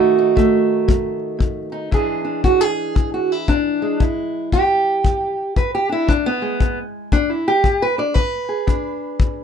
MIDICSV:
0, 0, Header, 1, 3, 480
1, 0, Start_track
1, 0, Tempo, 519931
1, 1775, Time_signature, 4, 2, 24, 8
1, 8714, End_track
2, 0, Start_track
2, 0, Title_t, "Steel-string acoustic guitar"
2, 0, Program_c, 0, 25
2, 0, Note_on_c, 0, 47, 71
2, 0, Note_on_c, 0, 51, 59
2, 0, Note_on_c, 0, 57, 59
2, 0, Note_on_c, 0, 63, 58
2, 0, Note_on_c, 0, 66, 65
2, 160, Note_off_c, 0, 63, 0
2, 171, Note_on_c, 0, 63, 54
2, 300, Note_off_c, 0, 47, 0
2, 325, Note_off_c, 0, 57, 0
2, 327, Note_on_c, 0, 47, 67
2, 336, Note_on_c, 0, 57, 57
2, 776, Note_off_c, 0, 47, 0
2, 811, Note_on_c, 0, 47, 67
2, 1258, Note_off_c, 0, 47, 0
2, 1280, Note_on_c, 0, 47, 62
2, 1577, Note_off_c, 0, 63, 0
2, 1588, Note_on_c, 0, 63, 53
2, 1732, Note_off_c, 0, 47, 0
2, 1750, Note_off_c, 0, 63, 0
2, 1754, Note_off_c, 0, 57, 0
2, 1756, Note_off_c, 0, 51, 0
2, 1765, Note_off_c, 0, 66, 0
2, 1766, Note_on_c, 0, 40, 71
2, 1773, Note_on_c, 0, 52, 47
2, 1778, Note_on_c, 0, 56, 45
2, 1786, Note_on_c, 0, 62, 48
2, 1792, Note_on_c, 0, 68, 46
2, 2069, Note_off_c, 0, 62, 0
2, 2072, Note_on_c, 0, 62, 46
2, 2215, Note_off_c, 0, 40, 0
2, 2252, Note_on_c, 0, 40, 68
2, 2253, Note_off_c, 0, 68, 0
2, 2256, Note_on_c, 0, 66, 88
2, 2407, Note_off_c, 0, 66, 0
2, 2407, Note_on_c, 0, 68, 90
2, 2697, Note_off_c, 0, 40, 0
2, 2725, Note_on_c, 0, 40, 64
2, 2890, Note_off_c, 0, 68, 0
2, 2898, Note_on_c, 0, 66, 68
2, 3064, Note_off_c, 0, 66, 0
2, 3064, Note_on_c, 0, 64, 80
2, 3174, Note_off_c, 0, 40, 0
2, 3215, Note_on_c, 0, 40, 71
2, 3217, Note_off_c, 0, 62, 0
2, 3219, Note_off_c, 0, 64, 0
2, 3220, Note_on_c, 0, 62, 86
2, 3524, Note_off_c, 0, 56, 0
2, 3527, Note_on_c, 0, 56, 43
2, 3658, Note_off_c, 0, 40, 0
2, 3692, Note_on_c, 0, 40, 68
2, 3697, Note_off_c, 0, 62, 0
2, 3706, Note_on_c, 0, 64, 47
2, 4136, Note_off_c, 0, 40, 0
2, 4181, Note_on_c, 0, 40, 69
2, 4182, Note_off_c, 0, 64, 0
2, 4185, Note_on_c, 0, 67, 101
2, 4213, Note_off_c, 0, 56, 0
2, 4621, Note_off_c, 0, 40, 0
2, 4655, Note_on_c, 0, 40, 68
2, 5004, Note_off_c, 0, 52, 0
2, 5098, Note_off_c, 0, 40, 0
2, 5136, Note_on_c, 0, 40, 72
2, 5139, Note_off_c, 0, 67, 0
2, 5143, Note_on_c, 0, 71, 75
2, 5298, Note_off_c, 0, 71, 0
2, 5305, Note_on_c, 0, 67, 85
2, 5440, Note_on_c, 0, 62, 42
2, 5459, Note_off_c, 0, 67, 0
2, 5469, Note_on_c, 0, 64, 89
2, 5579, Note_off_c, 0, 40, 0
2, 5606, Note_on_c, 0, 40, 72
2, 5620, Note_off_c, 0, 62, 0
2, 5620, Note_on_c, 0, 62, 85
2, 5621, Note_off_c, 0, 64, 0
2, 5776, Note_off_c, 0, 62, 0
2, 5781, Note_on_c, 0, 59, 93
2, 5926, Note_on_c, 0, 56, 46
2, 6054, Note_off_c, 0, 40, 0
2, 6096, Note_on_c, 0, 40, 65
2, 6257, Note_off_c, 0, 59, 0
2, 6539, Note_off_c, 0, 40, 0
2, 6575, Note_on_c, 0, 40, 72
2, 6579, Note_on_c, 0, 62, 96
2, 6735, Note_on_c, 0, 64, 78
2, 6736, Note_off_c, 0, 62, 0
2, 6894, Note_off_c, 0, 64, 0
2, 6903, Note_on_c, 0, 67, 89
2, 7019, Note_off_c, 0, 40, 0
2, 7053, Note_on_c, 0, 40, 73
2, 7219, Note_off_c, 0, 67, 0
2, 7222, Note_on_c, 0, 71, 92
2, 7367, Note_on_c, 0, 62, 46
2, 7372, Note_off_c, 0, 71, 0
2, 7376, Note_on_c, 0, 74, 76
2, 7498, Note_off_c, 0, 40, 0
2, 7516, Note_off_c, 0, 74, 0
2, 7516, Note_on_c, 0, 71, 91
2, 7519, Note_off_c, 0, 56, 0
2, 7519, Note_off_c, 0, 62, 0
2, 7525, Note_on_c, 0, 40, 69
2, 7835, Note_on_c, 0, 68, 43
2, 7975, Note_off_c, 0, 40, 0
2, 8005, Note_on_c, 0, 40, 68
2, 8006, Note_on_c, 0, 62, 45
2, 8455, Note_off_c, 0, 40, 0
2, 8497, Note_on_c, 0, 40, 63
2, 8714, Note_off_c, 0, 40, 0
2, 8714, Note_off_c, 0, 62, 0
2, 8714, Note_off_c, 0, 68, 0
2, 8714, Note_off_c, 0, 71, 0
2, 8714, End_track
3, 0, Start_track
3, 0, Title_t, "Drums"
3, 341, Note_on_c, 9, 36, 63
3, 434, Note_off_c, 9, 36, 0
3, 818, Note_on_c, 9, 36, 67
3, 910, Note_off_c, 9, 36, 0
3, 1297, Note_on_c, 9, 36, 62
3, 1389, Note_off_c, 9, 36, 0
3, 1775, Note_on_c, 9, 36, 63
3, 1868, Note_off_c, 9, 36, 0
3, 2253, Note_on_c, 9, 36, 62
3, 2345, Note_off_c, 9, 36, 0
3, 2734, Note_on_c, 9, 36, 70
3, 2826, Note_off_c, 9, 36, 0
3, 3214, Note_on_c, 9, 36, 61
3, 3307, Note_off_c, 9, 36, 0
3, 3696, Note_on_c, 9, 36, 68
3, 3789, Note_off_c, 9, 36, 0
3, 4177, Note_on_c, 9, 36, 60
3, 4270, Note_off_c, 9, 36, 0
3, 4658, Note_on_c, 9, 36, 65
3, 4750, Note_off_c, 9, 36, 0
3, 5137, Note_on_c, 9, 36, 62
3, 5230, Note_off_c, 9, 36, 0
3, 5618, Note_on_c, 9, 36, 66
3, 5710, Note_off_c, 9, 36, 0
3, 6097, Note_on_c, 9, 36, 67
3, 6190, Note_off_c, 9, 36, 0
3, 6574, Note_on_c, 9, 36, 69
3, 6666, Note_off_c, 9, 36, 0
3, 7053, Note_on_c, 9, 36, 63
3, 7145, Note_off_c, 9, 36, 0
3, 7530, Note_on_c, 9, 36, 68
3, 7622, Note_off_c, 9, 36, 0
3, 8011, Note_on_c, 9, 36, 65
3, 8103, Note_off_c, 9, 36, 0
3, 8490, Note_on_c, 9, 36, 74
3, 8582, Note_off_c, 9, 36, 0
3, 8714, End_track
0, 0, End_of_file